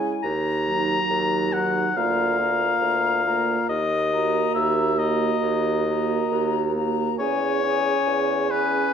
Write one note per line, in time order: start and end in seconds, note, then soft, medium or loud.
0.00 0.14 C#3 medium
0.00 0.24 G#3 medium
0.00 0.24 E4 soft
0.00 0.24 G#5 medium
0.23 1.00 D#2 medium
0.23 1.54 A#5 medium
0.68 1.52 F#3 medium
0.68 1.52 D#4 medium
0.68 1.52 A#5 medium
1.10 1.86 D#2 medium
1.52 1.95 F#3 medium
1.52 1.96 D#4 soft
1.52 1.98 F#5 medium
1.52 1.96 A#5 medium
1.95 2.72 D2 medium
1.95 2.38 A#3 medium
1.95 2.39 F4 medium
1.95 3.69 F5 medium
1.95 2.39 A#5 medium
2.40 3.24 A#3 medium
2.40 3.24 F4 medium
2.40 3.25 A#5 medium
2.82 3.59 D2 medium
3.26 3.69 A#3 medium
3.26 3.69 F4 soft
3.26 3.69 A#5 medium
3.69 4.45 D#2 medium
3.69 4.54 D#5 medium
4.13 4.97 A#3 medium
4.13 4.97 F#4 medium
4.13 4.97 A#5 medium
4.55 5.32 D#2 medium
4.55 5.00 E5 medium
4.98 5.85 A#3 medium
4.98 5.85 F#4 soft
4.98 6.76 D#5 medium
4.98 5.85 A#5 medium
5.42 6.21 D#2 medium
5.86 6.73 A#3 medium
5.86 6.74 F#4 medium
5.86 6.75 A#5 medium
6.32 7.09 D#2 medium
6.76 7.18 A#3 medium
6.76 7.19 F#4 medium
6.76 7.19 A#5 medium
7.19 7.97 E2 medium
7.19 7.62 C#4 medium
7.19 7.62 G#4 soft
7.19 8.52 C#5 loud
7.19 7.62 G#5 medium
7.64 8.50 C#4 soft
7.64 8.51 G#4 medium
7.64 8.51 G#5 medium
8.07 8.87 E2 medium
8.51 8.93 C#4 medium
8.51 8.93 G#4 soft
8.51 8.93 B4 medium
8.51 8.93 G#5 medium